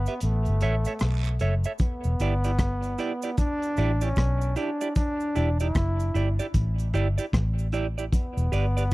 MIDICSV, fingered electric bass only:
0, 0, Header, 1, 2, 480
1, 0, Start_track
1, 0, Tempo, 791035
1, 1091, Time_signature, 4, 2, 24, 8
1, 5423, End_track
2, 0, Start_track
2, 0, Title_t, "Fingered electric bass"
2, 0, Program_c, 0, 33
2, 138, Note_on_c, 0, 33, 98
2, 275, Note_off_c, 0, 33, 0
2, 290, Note_on_c, 0, 31, 80
2, 371, Note_off_c, 0, 31, 0
2, 378, Note_on_c, 0, 33, 89
2, 515, Note_off_c, 0, 33, 0
2, 615, Note_on_c, 0, 35, 84
2, 840, Note_off_c, 0, 35, 0
2, 858, Note_on_c, 0, 30, 85
2, 995, Note_off_c, 0, 30, 0
2, 1244, Note_on_c, 0, 28, 92
2, 1328, Note_off_c, 0, 28, 0
2, 1334, Note_on_c, 0, 31, 83
2, 1789, Note_off_c, 0, 31, 0
2, 2293, Note_on_c, 0, 33, 80
2, 2519, Note_off_c, 0, 33, 0
2, 2533, Note_on_c, 0, 35, 81
2, 2759, Note_off_c, 0, 35, 0
2, 3256, Note_on_c, 0, 28, 101
2, 3480, Note_off_c, 0, 28, 0
2, 3492, Note_on_c, 0, 30, 91
2, 3718, Note_off_c, 0, 30, 0
2, 3732, Note_on_c, 0, 31, 89
2, 3872, Note_off_c, 0, 31, 0
2, 3971, Note_on_c, 0, 33, 91
2, 4198, Note_off_c, 0, 33, 0
2, 4210, Note_on_c, 0, 31, 83
2, 4351, Note_off_c, 0, 31, 0
2, 4453, Note_on_c, 0, 33, 91
2, 4908, Note_off_c, 0, 33, 0
2, 5081, Note_on_c, 0, 28, 95
2, 5167, Note_off_c, 0, 28, 0
2, 5173, Note_on_c, 0, 31, 93
2, 5423, Note_off_c, 0, 31, 0
2, 5423, End_track
0, 0, End_of_file